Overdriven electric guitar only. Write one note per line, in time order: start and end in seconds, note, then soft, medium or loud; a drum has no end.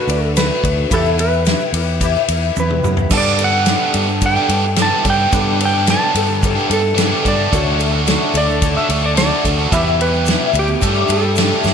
3.11 3.66 G2 loud
3.11 3.66 D3 medium
3.11 3.54 G3 loud
3.11 3.53 B3 loud
3.11 3.52 D4 loud
3.11 3.51 G4 loud
3.52 3.67 G3 medium
3.52 3.68 B3 medium
3.52 3.69 D4 medium
3.52 3.69 G4 medium
3.67 4.36 G2 medium
3.67 4.36 D3 loud
3.67 4.08 G3 loud
3.67 4.08 B3 loud
3.67 4.08 D4 loud
3.67 4.08 G4 loud
4.09 muted overdriven electric guitar stroke soft
4.36 4.48 G3 medium
4.36 4.49 B3 medium
4.36 4.51 D4 medium
4.36 4.51 G4 medium
4.50 4.63 G3 medium
4.50 4.63 B3 medium
4.50 4.64 D4 medium
4.50 4.63 G4 medium
4.64 muted overdriven electric guitar stroke medium
4.76 5.30 G2 loud
4.76 5.30 D3 medium
4.76 5.03 G3 medium
4.76 5.05 B3 medium
4.76 5.06 D4 loud
4.76 5.06 G4 loud
5.05 5.20 G3 medium
5.05 5.19 B3 medium
5.05 5.18 D4 medium
5.05 5.16 G4 medium
5.17 5.31 G3 medium
5.17 5.31 B3 medium
5.17 5.33 D4 medium
5.17 5.33 G4 medium
5.31 5.84 G2 loud
5.31 5.85 D3 loud
5.31 5.74 G3 loud
5.31 5.73 B3 loud
5.31 5.73 D4 loud
5.31 5.71 G4 loud
5.73 5.86 G3 medium
5.73 5.86 B3 medium
5.73 5.87 D4 medium
5.73 5.87 G4 medium
5.86 6.56 G2 loud
5.86 6.56 D3 medium
5.86 6.27 G3 medium
5.86 6.27 B3 medium
5.86 6.27 D4 loud
5.86 6.27 G4 loud
6.28 muted overdriven electric guitar stroke medium
6.55 6.66 G3 medium
6.55 6.68 B3 medium
6.55 6.69 D4 medium
6.55 6.70 G4 medium
6.68 6.81 G3 medium
6.68 6.81 B3 medium
6.68 6.80 D4 medium
6.68 6.80 G4 medium
6.81 muted overdriven electric guitar stroke medium
6.94 7.49 G2 loud
6.94 7.49 D3 loud
6.94 7.21 G3 loud
6.94 7.22 B3 loud
6.94 7.23 D4 loud
6.94 7.24 G4 loud
7.22 7.38 G3 medium
7.22 7.37 B3 medium
7.22 7.37 D4 medium
7.22 7.35 G4 medium
7.36 7.50 G3 medium
7.36 7.51 B3 medium
7.36 7.51 D4 medium
7.36 7.50 G4 medium
7.50 8.07 D3 loud
7.50 7.94 A3 loud
7.50 7.93 D4 loud
7.50 7.91 F#4 loud
7.92 8.07 A3 medium
7.92 8.08 D4 medium
7.92 8.09 F#4 medium
8.08 8.76 D3 loud
8.08 8.48 A3 loud
8.08 8.48 D4 loud
8.08 8.47 F#4 loud
8.48 muted overdriven electric guitar stroke medium
8.75 8.89 A3 medium
8.75 8.90 D4 medium
8.75 8.91 F#4 medium
8.90 9.13 D3 medium
8.90 9.03 A3 medium
8.90 9.03 D4 medium
8.90 9.02 F#4 medium
9.03 muted overdriven electric guitar stroke medium
9.15 9.41 D3 medium
9.15 9.43 A3 loud
9.15 9.44 D4 loud
9.15 9.44 F#4 loud
9.43 9.70 D3 medium
9.43 9.59 A3 medium
9.43 9.57 D4 medium
9.43 9.56 F#4 medium
9.57 9.71 A3 medium
9.57 9.71 D4 medium
9.57 9.70 F#4 medium
9.70 10.24 E2 loud
9.70 10.25 B2 loud
9.70 10.13 E3 medium
9.70 10.12 G3 loud
9.70 10.12 B3 loud
9.70 10.11 G4 loud
10.12 10.25 E3 medium
10.12 10.26 G3 medium
10.12 10.27 B3 medium
10.12 10.27 G4 medium
10.25 10.80 E2 medium
10.25 10.80 B2 medium
10.25 10.69 E3 loud
10.25 10.68 G3 loud
10.25 10.68 B3 loud
10.25 10.68 G4 loud
10.69 muted overdriven electric guitar stroke soft
10.82 11.08 G3 loud
10.82 10.97 A3 loud
10.82 10.96 D4 loud
10.82 10.94 G4 loud
10.95 11.09 A3 medium
10.95 11.10 D4 medium
10.95 11.11 G4 medium
11.09 11.36 G3 medium
11.09 11.24 A3 medium
11.09 11.23 D4 medium
11.09 11.23 G4 medium
11.24 muted overdriven electric guitar stroke medium
11.37 11.64 G3 medium
11.37 11.65 A3 medium
11.37 11.66 D4 loud
11.37 11.66 G4 loud
11.65 11.74 G3 medium
11.65 11.74 A3 medium
11.65 11.74 D4 medium
11.65 11.74 G4 medium